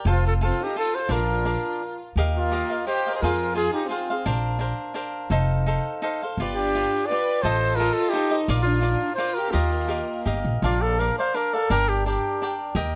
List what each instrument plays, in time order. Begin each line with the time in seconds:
0.05 upright bass F1, cavaquinho F4 A4 C5 F5
0.10 violin section C4, trumpet F4
0.26 violin section F4, trumpet A4
0.41 violin section C4, cavaquinho F4 A4 C5 F5, trumpet F4
0.64 violin section D#4, trumpet G4
0.76 cavaquinho F4 A4 C5 F5, violin section F4, trumpet A4
0.95 violin section A4, trumpet C5
1.09 upright bass A#1, cavaquinho D4 A#4 D5 F5, violin section F4, trumpet A#4
1.45 cavaquinho D4 A#4 D5 F5
2.16 upright bass D#2, cavaquinho G4 A#4 D#5 F5
2.37 violin section A#3, trumpet F4
2.51 cavaquinho G4 A#4 D#5 F5
2.70 cavaquinho A#4 D#5 F5
2.87 cavaquinho G4 A#4 D#5 F5, violin section G4, trumpet C5
3.07 cavaquinho A#4 D#5 F5
3.15 violin section G#4, trumpet C5
3.22 upright bass F2, violin section F4, cavaquinho F4 G#4 C5 F5, trumpet A#4
3.55 cavaquinho F4 G#4 C5 F5, violin section F4, trumpet G#4
3.72 violin section D#4, trumpet G4
3.88 violin section C4, cavaquinho F4 G#4 C5 F5, trumpet F4
4.10 cavaquinho G#4 C5 F5
4.26 upright bass A#1, cavaquinho D4 A#4 C5 F5
4.59 cavaquinho D4 A#4 C5 F5
4.94 cavaquinho D4 A#4 C5 F5
5.30 upright bass F1, cavaquinho D#4 A4 C5 F5
5.66 cavaquinho D#4 A4 C5 F5
6.02 cavaquinho D#4 A4 C5 F5
6.22 cavaquinho A4 C5 F5
6.37 upright bass G1, cavaquinho F4 G4 B4 D5
6.55 violin section D4, trumpet G4
6.75 cavaquinho F4 G4 B4 D5
7.07 violin section B4, trumpet D5
7.11 cavaquinho F4 G4 B4 D5
7.42 upright bass A1, cavaquinho F4 A4 C5 D#5, violin section A4, trumpet C5
7.76 violin section F4, cavaquinho F4 A4, trumpet A#4
7.80 cavaquinho C5 D#5
7.93 violin section F4, trumpet A4
8.10 violin section D#4, cavaquinho F4, trumpet G4
8.14 cavaquinho A4 C5 D#5
8.31 cavaquinho A4 C5 D#5
8.48 upright bass A#1, cavaquinho F4 A#4 D5 F5
8.62 violin section D4, trumpet F4
8.82 cavaquinho F4 A#4 D5 F5
9.15 violin section F4, cavaquinho F4 A#4 F5, trumpet C5
9.19 cavaquinho D5
9.35 violin section G4, trumpet A#4
9.51 upright bass D#2, violin section A#3, trumpet F4, cavaquinho G4 A#4 D#5 F5
9.88 cavaquinho G4 A#4 D#5 F5
10.25 upright bass G1, cavaquinho G4 A#4 D#5 F5
10.45 upright bass A#1
10.62 upright bass A#1, cavaquinho D4 A#4 D5 F5, trumpet F4
10.82 trumpet A4
10.99 cavaquinho D4 A#4 D5 F5, trumpet A#4
11.19 cavaquinho A#4 D5 F5, trumpet C5
11.34 cavaquinho D4 A#4 D5 F5, trumpet A#4
11.53 trumpet A4, cavaquinho A#4 D5 F5
11.70 upright bass G1, cavaquinho D4 A#4 D5 G5, trumpet A#4
11.89 trumpet G4
12.06 cavaquinho D4 A#4 D5 G5, trumpet G4
12.42 cavaquinho D4 A#4 D5 G5
12.75 upright bass D#2, cavaquinho G4 A#4 D#5 G5